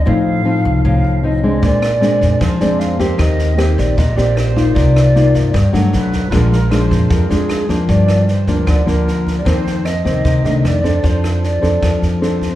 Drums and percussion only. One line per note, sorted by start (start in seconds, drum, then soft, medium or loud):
1.63 kick medium
1.63 snare soft
1.82 cross-stick medium
1.82 snare soft
2.02 snare soft
2.21 kick soft
2.21 snare soft
2.41 kick medium
2.41 cross-stick medium
2.41 snare soft
2.60 snare soft
2.80 snare soft
2.99 kick soft
2.99 snare soft
3.19 kick medium
3.19 cross-stick medium
3.19 snare soft
3.39 snare soft
3.59 cross-stick medium
3.59 snare soft
3.78 kick soft
3.78 snare soft
3.98 kick medium
3.98 snare soft
4.18 snare soft
4.37 cross-stick medium
4.37 snare soft
4.57 kick soft
4.57 snare soft
4.76 kick medium
4.76 snare soft
4.96 cross-stick medium
4.96 snare soft
5.16 snare soft
5.35 kick soft
5.35 snare soft
5.54 kick medium
5.54 cross-stick medium
5.54 snare soft
5.74 snare soft
5.93 snare soft
6.13 kick soft
6.13 snare soft
6.32 kick medium
6.32 cross-stick medium
6.32 snare soft
6.52 snare soft
6.72 cross-stick medium
6.72 snare soft
6.91 kick soft
6.91 snare soft
7.10 kick medium
7.10 snare soft
7.30 snare soft
7.49 cross-stick medium
7.49 snare soft
7.69 kick soft
7.69 snare soft
7.88 kick medium
7.88 snare soft
8.08 cross-stick medium
8.08 snare soft
8.28 snare soft
8.47 kick soft
8.47 snare soft
8.67 kick medium
8.67 cross-stick medium
8.67 snare soft
8.87 snare soft
9.08 snare soft
9.27 kick soft
9.27 snare soft
9.46 kick medium
9.46 cross-stick medium
9.46 snare soft
9.67 snare soft
9.86 cross-stick medium
9.86 snare soft
10.05 kick soft
10.05 snare soft
10.25 kick medium
10.25 snare soft
10.44 snare soft
10.65 cross-stick medium
10.65 snare soft
10.84 kick soft
10.84 snare soft
11.04 kick medium
11.04 snare soft
11.24 cross-stick medium
11.24 snare soft
11.44 snare soft
11.63 kick soft
11.63 snare soft
11.83 kick medium
11.83 cross-stick medium
11.83 snare soft
12.03 snare soft
12.22 snare soft
12.41 kick soft
12.41 snare soft